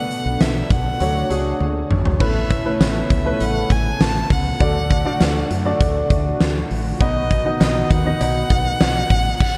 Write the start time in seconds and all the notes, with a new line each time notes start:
Already playing: B2 A3 B3 D4 F#4 A4 B4 F#5
0.11 closed hi-hat
0.26 B1
0.40 B1 E5, snare, closed hi-hat
0.70 B1 F#5, kick, closed hi-hat
1.00 D2 F#3 A3 D4 F#4 C#5, closed hi-hat
1.30 C#2 A3 D4 F#4 G#4, closed hi-hat
1.60 D2, high tom
1.91 G#1, mid tom
2.05 floor tom
2.19 A1 A2 C#3 A3 B3 C#4 E4 A4 B4 E5, kick, crash
2.51 kick, closed hi-hat
2.65 A3 C#4 E4 B4
2.80 A1 E5, snare, closed hi-hat
3.10 C#2, kick, closed hi-hat
3.25 A3 C#4 E4 B4
3.40 A1 F#5, closed hi-hat
3.70 A1 G#5, kick, closed hi-hat
4.00 A1 A5, snare, closed hi-hat
4.30 C#2 F#5, kick, open hi-hat
4.60 D2 D3 A3 D4 F#4 D5, kick, closed hi-hat
4.90 kick, closed hi-hat
5.05 A3 D4 F#4 D5
5.21 D2, snare, closed hi-hat
5.51 F#2, closed hi-hat
5.65 A3 D4 F#4 D5
5.80 D2, kick, closed hi-hat
6.10 D2, kick, closed hi-hat
6.41 D2, snare, closed hi-hat
6.71 A1, open hi-hat
7.00 B1 B2 D#3 B3 D#4 F#4 D#5, kick, closed hi-hat, cowbell
7.31 kick, closed hi-hat
7.45 B3 D#4 F#4 D#5
7.60 B1 D#5, snare, closed hi-hat, cowbell
7.90 D#2 F#5, kick, closed hi-hat
8.05 B3 D#4 F#4 D#5
8.21 B1, closed hi-hat, cowbell
8.50 B1, kick, closed hi-hat
8.81 B1, snare, closed hi-hat, cowbell
9.10 A1, kick, open hi-hat
9.40 kick, crash